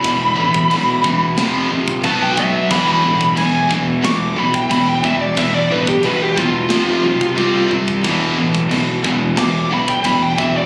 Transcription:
<<
  \new Staff \with { instrumentName = "Lead electric guitar" } { \time 4/4 \tempo 4 = 90 b''2~ b''8 r8 a''16 g''16 e''8 | b''16 b''8. gis''8 r8 d'''8 b''16 g''16 b''16 g''16 e''16 d''16 | e''16 d''16 b'16 g'16 b'16 g'16 f'2 r8 | r2 d'''8 b''16 g''16 b''16 g''16 e''16 d''16 | }
  \new Staff \with { instrumentName = "Distorted electric guitar" } { \clef bass \time 4/4 <e, b,>8 <e, b,>8 <e, b,>8 <e, b,>8 <f, c f>8 <f, c>8 <b, fis b>8 <b, fis>8 | <e, b, e>8 <e, b,>8 <e, b,>8 <e, b,>8 <e, b,>8 <e, b,>8 <e, b,>8 <e, b,>8 | <e, b,>8 <e, b,>8 <e, b,>8 <e, b,>8 <f, c f>8 <f, c>8 <c g c'>8 <c g>8 | <e, b, e>8 <e, b,>8 <e, b,>8 <e, b,>8 <e, b,>8 <e, b,>8 <e, b,>8 <e, b,>8 | }
  \new Staff \with { instrumentName = "Distorted electric guitar" } { \clef bass \time 4/4 <e, b,>8 <e, b,>8 <e, b,>8 <e, b,>8 <f, c f>8 <f, c>8 <b, fis b>8 <b, fis>8 | <e, b, e>8 <e, b,>8 <e, b,>8 <e, b,>8 <e, b,>8 <e, b,>8 <e, b,>8 <e, b,>8 | <e, b,>8 <e, b,>8 <e, b,>8 <e, b,>8 <f, c f>8 <f, c>8 <c g c'>8 <c g>8 | <e, b, e>8 <e, b,>8 <e, b,>8 <e, b,>8 <e, b,>8 <e, b,>8 <e, b,>8 <e, b,>8 | }
  \new Staff \with { instrumentName = "Overdriven electric guitar" } { \clef bass \time 4/4 <e, b, e>8 <e, b, e>8 <e, b, e>8 <e, b, e>8 <f, c f>8 <f, c f>8 <b, fis b>8 <b, fis b>8 | <e, b, e>8 <e, b, e>8 <e, b, e>8 <e, b, e>8 <e, b, e>8 <e, b, e>8 <e, b, e>8 <e, b, e>8 | <e, b, e>8 <e, b, e>8 <e, b, e>8 <e, b, e>8 <f, c f>8 <f, c f>8 <c g c'>8 <c g c'>8 | <e, b, e>8 <e, b, e>8 <e, b, e>8 <e, b, e>8 <e, b, e>8 <e, b, e>8 <e, b, e>8 <e, b, e>8 | }
  \new Staff \with { instrumentName = "Fingered electric bass" } { \clef bass \time 4/4 e,,8 a,,8 b,,8 e,,8 f,,8 ais,,8 b,,4 | e,,8 a,,8 b,,8 e,,8 e,,8 b,,8 e,,4 | e,,8 a,,8 b,,8 e,,8 f,,8 b,,8 c,4 | e,,8 a,,8 b,,8 e,,8 e,,8 b,,8 e,,4 | }
  \new DrumStaff \with { instrumentName = "Drums" } \drummode { \time 4/4 <cymc bd>8. bd16 cymc8 bd8 <cymc sn>8. bd16 <cymc bd>8 bd8 | <cymc bd>8. bd16 cymc8 bd8 <cymc sn>8. bd16 <cymc bd>8 bd8 | <cymc bd>8. bd16 cymc8 bd8 <cymc sn>8. bd16 bd8 toml16 bd16 | <cymc bd>8. bd16 cymc8 bd8 <cymc sn>8. bd16 <cymc bd>8 bd8 | }
>>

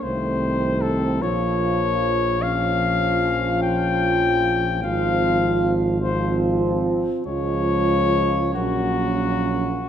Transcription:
<<
  \new Staff \with { instrumentName = "Flugelhorn" } { \time 6/8 \key bes \dorian \tempo 4. = 50 c''4 a'8 des''4. | \key f \minor f''4. g''4. | f''4 r8 c''8 r4 | des''4. ges'4. | }
  \new Staff \with { instrumentName = "French horn section" } { \time 6/8 \key bes \dorian c'4. f'4. | \key f \minor f'2. | f'4. f'4. | f'4. des'4. | }
  \new Staff \with { instrumentName = "Trombone section" } { \time 6/8 \key bes \dorian a4. bes4. | \key f \minor des'2. | c'4. c'4. | aes4. bes4. | }
  \new Staff \with { instrumentName = "Euphonium" } { \clef bass \time 6/8 \key bes \dorian ees4. f4. | \key f \minor f2. | f4. f4. | f4. ges4. | }
  \new Staff \with { instrumentName = "Tuba" } { \clef bass \time 6/8 \key bes \dorian c,4. bes,,4.~ | \key f \minor bes,,2. | aes,,2. | des,4. bes,,4. | }
>>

